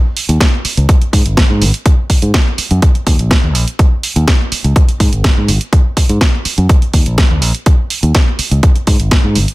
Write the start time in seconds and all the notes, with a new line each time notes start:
0.17 open hi-hat
0.29 D#2, closed hi-hat
0.40 kick, snare, closed hi-hat
0.65 muted fingered electric bass stroke, open hi-hat
0.77 C#2, closed hi-hat
0.89 kick, closed hi-hat
1.01 muted fingered electric bass stroke, closed hi-hat
1.13 G#2, kick, open hi-hat
1.26 G#1, closed hi-hat
1.37 kick, snare, closed hi-hat
1.50 G#2
1.61 G#1, open hi-hat
1.74 closed hi-hat
1.86 kick, closed hi-hat
2.10 kick, open hi-hat
2.22 G#2, closed hi-hat
2.34 kick, snare, closed hi-hat
2.58 muted fingered electric bass stroke, open hi-hat
2.71 F#2, closed hi-hat
2.82 kick, closed hi-hat
2.95 muted fingered electric bass stroke, closed hi-hat
3.06 D#2, kick, open hi-hat
3.19 A#1, closed hi-hat
3.31 kick, snare, closed hi-hat
3.43 D#2
3.55 A#1, open hi-hat
3.68 closed hi-hat
3.79 kick, closed hi-hat
4.03 open hi-hat
4.16 D#2, closed hi-hat
4.28 kick, snare, closed hi-hat
4.52 muted fingered electric bass stroke, open hi-hat
4.64 C#2, closed hi-hat
4.76 kick, closed hi-hat
4.88 muted fingered electric bass stroke, closed hi-hat
5.00 G#2, kick, open hi-hat
5.12 G#1, closed hi-hat
5.24 kick, snare, closed hi-hat
5.37 G#2
5.48 G#1, open hi-hat
5.61 closed hi-hat
5.73 kick, closed hi-hat
5.97 kick, open hi-hat
6.09 G#2, closed hi-hat
6.21 kick, snare, closed hi-hat
6.45 muted fingered electric bass stroke, open hi-hat
6.58 F#2, closed hi-hat
6.69 kick, closed hi-hat
6.82 muted fingered electric bass stroke, closed hi-hat
6.93 D#2, kick, open hi-hat
7.06 A#1, closed hi-hat
7.18 kick, snare, closed hi-hat
7.30 D#2
7.42 A#1, open hi-hat
7.55 closed hi-hat
7.66 kick, closed hi-hat
7.90 open hi-hat
8.03 D#2, closed hi-hat
8.15 kick, snare, closed hi-hat
8.39 muted fingered electric bass stroke, open hi-hat
8.51 C#2, closed hi-hat
8.63 kick, closed hi-hat
8.76 muted fingered electric bass stroke, closed hi-hat
8.87 G#2, kick, open hi-hat
9.00 G#1, closed hi-hat
9.11 kick, snare, closed hi-hat
9.24 G#2
9.35 G#1, open hi-hat
9.48 closed hi-hat